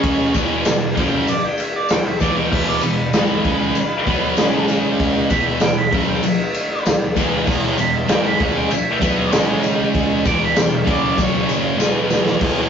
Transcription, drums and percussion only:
0.03 kick loud
0.03 ride loud
0.03 tambourine soft
0.34 kick loud
0.34 ride medium
0.34 tambourine medium
0.65 snare loud
0.65 ride loud
0.65 tambourine loud
0.97 kick loud
0.97 ride medium
0.97 tambourine soft
1.27 ride loud
1.27 tambourine medium
1.58 ride medium
1.58 tambourine medium
1.89 snare loud
1.89 ride loud
1.89 tambourine loud
2.20 kick loud
2.20 ride medium
2.20 tambourine medium
2.52 kick loud
2.52 crash loud
2.81 ride medium
2.81 tambourine medium
3.13 snare loud
3.13 ride loud
3.13 tambourine medium
3.45 kick loud
3.45 ride medium
3.75 ride medium
3.75 tambourine medium
4.07 kick loud
4.07 ride medium
4.37 snare loud
4.37 ride loud
4.37 tambourine medium
4.68 ride medium
4.68 tambourine medium
5.00 kick loud
5.00 ride loud
5.30 kick loud
5.30 ride medium
5.30 tambourine medium
5.60 snare loud
5.60 ride loud
5.60 tambourine medium
5.92 kick loud
5.92 ride medium
6.23 ride loud
6.23 tambourine medium
6.54 ride medium
6.54 tambourine medium
6.86 snare loud
6.86 ride loud
6.86 tambourine medium
7.16 kick loud
7.16 ride medium
7.16 tambourine medium
7.47 kick loud
7.47 crash loud
7.78 ride medium
7.78 tambourine medium
8.09 snare loud
8.09 ride loud
8.09 tambourine medium
8.40 kick loud
8.40 ride medium
8.71 ride loud
8.71 tambourine medium
9.02 kick loud
9.02 ride medium
9.02 tambourine medium
9.33 snare loud
9.33 ride loud
9.33 tambourine loud
9.63 ride medium
9.63 tambourine medium
9.94 kick loud
9.94 ride loud
9.94 tambourine soft
10.25 kick loud
10.25 ride medium
10.25 tambourine medium
10.56 snare loud
10.56 ride loud
10.56 tambourine loud
10.87 kick loud
10.87 ride medium
10.87 tambourine soft
11.18 kick loud
11.18 ride loud
11.18 tambourine medium
11.49 ride medium
11.49 tambourine medium
11.79 snare medium
11.79 tambourine loud
12.10 snare loud
12.10 tambourine medium
12.26 snare medium
12.41 kick loud
12.41 crash loud

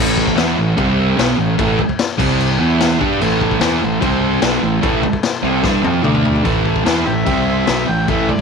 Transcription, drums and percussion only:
0.17 kick medium
0.27 kick medium
0.38 snare loud
0.38 crash medium
0.78 kick loud
0.78 crash medium
1.19 snare loud
1.19 crash medium
1.59 kick loud
1.59 crash medium
1.79 kick medium
1.89 kick medium
1.99 snare loud
1.99 crash medium
2.19 kick loud
2.19 crash loud
2.40 crash medium
2.80 snare loud
2.80 crash medium
3.01 kick loud
3.21 crash medium
3.41 kick medium
3.51 kick medium
3.61 snare loud
3.61 crash medium
4.02 kick loud
4.02 crash medium
4.42 snare loud
4.42 crash medium
4.83 kick loud
4.83 crash medium
5.03 kick medium
5.13 kick medium
5.23 snare loud
5.23 crash medium
5.63 kick loud
5.63 snare medium
5.84 high tom medium
6.04 mid tom loud
6.15 mid tom medium
6.25 floor tom medium
6.35 floor tom medium
6.45 kick loud
6.45 crash medium
6.66 kick medium
6.76 kick medium
6.86 snare loud
6.86 crash medium
7.26 kick loud
7.26 crash medium
7.67 snare loud
7.67 crash medium
8.08 kick loud
8.08 crash medium
8.29 kick medium

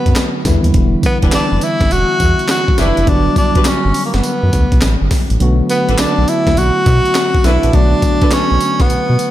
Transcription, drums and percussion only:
0.06 kick medium
0.06 closed hi-hat medium
0.15 snare loud
0.15 clap loud
0.15 closed hi-hat medium
0.15 tambourine loud
0.45 kick medium
0.45 snare medium
0.45 closed hi-hat medium
0.45 tambourine medium
0.64 closed hi-hat medium
0.74 kick loud
0.74 closed hi-hat medium
1.03 kick medium
1.03 closed hi-hat medium
1.03 tambourine medium
1.22 kick loud
1.22 closed hi-hat medium
1.32 snare loud
1.32 clap loud
1.32 closed hi-hat medium
1.32 tambourine loud
1.61 closed hi-hat medium
1.61 tambourine medium
1.81 kick loud
1.81 snare medium
1.81 closed hi-hat medium
1.91 closed hi-hat medium
1.91 tambourine medium
2.20 kick medium
2.20 closed hi-hat medium
2.20 tambourine medium
2.39 closed hi-hat medium
2.48 snare loud
2.48 clap loud
2.48 closed hi-hat medium
2.48 tambourine loud
2.68 kick loud
2.78 snare medium
2.78 closed hi-hat medium
2.78 tambourine medium
2.97 closed hi-hat medium
3.07 kick loud
3.07 closed hi-hat medium
3.36 kick medium
3.36 closed hi-hat medium
3.36 tambourine medium
3.55 kick loud
3.55 closed hi-hat medium
3.65 snare loud
3.65 clap loud
3.65 closed hi-hat medium
3.65 tambourine loud
3.94 open hi-hat medium
3.94 tambourine medium
4.14 snare medium
4.14 closed hi-hat medium
4.23 closed hi-hat medium
4.23 tambourine medium
4.53 kick loud
4.53 closed hi-hat medium
4.53 tambourine medium
4.72 kick medium
4.72 closed hi-hat soft
4.81 snare loud
4.81 clap loud
4.81 closed hi-hat medium
4.81 tambourine loud
5.11 kick medium
5.11 snare medium
5.11 open hi-hat medium
5.11 tambourine medium
5.30 closed hi-hat medium
5.40 closed hi-hat medium
5.69 closed hi-hat medium
5.69 tambourine medium
5.89 closed hi-hat medium
5.98 snare loud
5.98 clap loud
5.98 closed hi-hat medium
5.98 tambourine medium
6.28 closed hi-hat medium
6.28 tambourine medium
6.47 kick loud
6.47 snare medium
6.47 closed hi-hat medium
6.57 closed hi-hat medium
6.57 tambourine medium
6.86 kick loud
6.86 closed hi-hat medium
6.86 tambourine medium
7.05 closed hi-hat medium
7.15 snare loud
7.15 clap loud
7.15 closed hi-hat medium
7.15 tambourine loud
7.35 kick medium
7.44 snare medium
7.44 closed hi-hat medium
7.44 tambourine medium
7.63 closed hi-hat medium
7.73 kick loud
7.73 closed hi-hat medium
8.02 kick loud
8.02 closed hi-hat medium
8.02 tambourine medium
8.21 kick loud
8.21 closed hi-hat medium
8.31 snare loud
8.31 clap loud
8.31 closed hi-hat medium
8.31 tambourine medium
8.61 closed hi-hat medium
8.61 tambourine medium
8.80 kick medium
8.80 snare medium
8.80 closed hi-hat medium
8.90 closed hi-hat medium
8.90 tambourine medium
9.19 closed hi-hat medium
9.19 tambourine medium

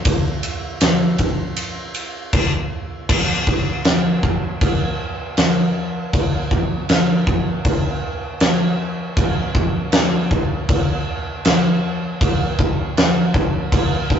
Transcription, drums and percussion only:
0.05 kick loud
0.05 ride loud
0.43 ride medium
0.81 snare loud
0.81 ride loud
1.18 kick medium
1.18 ride medium
1.56 ride medium
1.94 ride medium
2.33 kick loud
2.33 crash medium
3.09 kick loud
3.09 crash loud
3.09 crash medium
3.47 kick medium
3.85 snare loud
3.85 crash medium
4.23 kick medium
4.61 kick loud
4.61 crash medium
5.37 snare loud
5.37 crash medium
6.13 kick loud
6.13 crash medium
6.51 kick medium
6.89 snare loud
6.89 crash medium
7.27 kick medium
7.65 kick loud
7.65 crash medium
8.40 snare loud
8.40 crash medium
9.17 kick loud
9.17 crash medium
9.55 kick medium
9.92 snare loud
9.92 crash medium
10.31 kick medium
10.69 kick loud
10.69 crash medium
11.45 snare loud
11.45 crash medium
12.21 kick loud
12.21 crash medium
12.59 kick medium
12.97 snare loud
12.97 crash medium
13.34 kick medium
13.72 kick loud
13.72 crash medium
14.10 kick medium

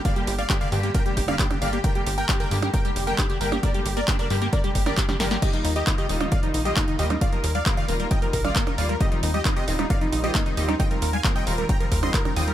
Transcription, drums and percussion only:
0.05 kick loud
0.05 closed hi-hat medium
0.16 closed hi-hat soft
0.27 open hi-hat loud
0.39 closed hi-hat soft
0.50 kick loud
0.50 clap loud
0.50 closed hi-hat loud
0.61 closed hi-hat soft
0.72 open hi-hat medium
0.83 closed hi-hat soft
0.95 kick loud
0.95 closed hi-hat loud
1.06 closed hi-hat soft
1.17 kick medium
1.17 open hi-hat loud
1.28 closed hi-hat soft
1.28 percussion blips medium
1.39 kick loud
1.39 clap loud
1.39 closed hi-hat loud
1.51 closed hi-hat soft
1.51 percussion blips medium
1.62 open hi-hat medium
1.73 closed hi-hat soft
1.84 kick loud
1.84 closed hi-hat loud
1.95 closed hi-hat soft
2.07 open hi-hat loud
2.18 closed hi-hat soft
2.29 kick loud
2.29 clap loud
2.29 closed hi-hat loud
2.40 closed hi-hat soft
2.51 open hi-hat medium
2.62 closed hi-hat soft
2.62 percussion blips medium
2.74 kick loud
2.74 closed hi-hat loud
2.85 closed hi-hat soft
2.96 open hi-hat loud
3.07 closed hi-hat soft
3.18 kick loud
3.18 clap loud
3.18 closed hi-hat loud
3.30 closed hi-hat soft
3.41 open hi-hat medium
3.52 closed hi-hat soft
3.52 percussion blips medium
3.63 kick loud
3.63 closed hi-hat loud
3.74 closed hi-hat soft
3.86 open hi-hat loud
3.97 closed hi-hat soft
4.08 kick loud
4.08 clap loud
4.08 closed hi-hat loud
4.19 closed hi-hat soft
4.30 open hi-hat medium
4.42 closed hi-hat soft
4.53 kick loud
4.53 closed hi-hat medium
4.64 closed hi-hat soft
4.75 kick medium
4.75 open hi-hat loud
4.86 closed hi-hat soft
4.86 percussion blips medium
4.97 kick loud
4.97 clap loud
4.97 closed hi-hat loud
5.09 snare medium
5.09 closed hi-hat soft
5.09 percussion blips medium
5.20 snare medium
5.20 open hi-hat medium
5.31 snare medium
5.31 closed hi-hat soft
5.42 kick loud
5.42 closed hi-hat loud
5.42 crash medium
5.53 closed hi-hat soft
5.65 open hi-hat loud
5.76 closed hi-hat soft
5.87 kick loud
5.87 clap loud
5.87 closed hi-hat loud
5.98 closed hi-hat soft
6.09 open hi-hat medium
6.21 closed hi-hat soft
6.21 percussion blips medium
6.32 kick loud
6.32 closed hi-hat loud
6.43 closed hi-hat soft
6.54 open hi-hat loud
6.65 closed hi-hat soft
6.77 kick loud
6.77 clap loud
6.77 closed hi-hat loud
6.88 closed hi-hat soft
6.99 open hi-hat medium
7.10 closed hi-hat soft
7.10 percussion blips medium
7.21 kick loud
7.21 closed hi-hat medium
7.33 closed hi-hat soft
7.44 open hi-hat loud
7.55 closed hi-hat soft
7.66 kick loud
7.66 clap loud
7.66 closed hi-hat medium
7.77 closed hi-hat soft
7.88 open hi-hat loud
8.00 closed hi-hat soft
8.11 kick loud
8.11 closed hi-hat loud
8.22 closed hi-hat soft
8.33 kick medium
8.33 open hi-hat loud
8.45 closed hi-hat soft
8.45 percussion blips medium
8.56 kick loud
8.56 clap loud
8.56 closed hi-hat medium
8.67 closed hi-hat soft
8.67 percussion blips medium
8.78 open hi-hat loud
8.89 closed hi-hat soft
9.01 kick loud
9.01 closed hi-hat medium
9.12 closed hi-hat soft
9.23 open hi-hat loud
9.34 closed hi-hat soft
9.45 kick loud
9.45 clap loud
9.45 closed hi-hat medium
9.56 closed hi-hat soft
9.68 open hi-hat loud
9.79 closed hi-hat soft
9.79 percussion blips medium
9.90 kick loud
9.90 closed hi-hat medium
10.01 closed hi-hat soft
10.13 open hi-hat loud
10.24 closed hi-hat soft
10.35 kick loud
10.35 clap loud
10.35 closed hi-hat loud
10.46 closed hi-hat soft
10.57 open hi-hat loud
10.69 closed hi-hat soft
10.69 percussion blips medium
10.80 kick loud
10.80 closed hi-hat medium
10.91 closed hi-hat soft
11.02 open hi-hat loud
11.13 closed hi-hat soft
11.24 kick loud
11.24 clap loud
11.24 closed hi-hat medium
11.36 closed hi-hat soft
11.47 open hi-hat loud
11.58 closed hi-hat soft
11.69 kick loud
11.69 closed hi-hat medium
11.80 closed hi-hat soft
11.92 kick medium
11.92 open hi-hat loud
12.03 closed hi-hat soft
12.03 percussion blips medium
12.14 kick loud
12.14 clap loud
12.14 closed hi-hat medium
12.25 closed hi-hat soft
12.25 percussion blips medium
12.36 open hi-hat loud
12.48 closed hi-hat soft

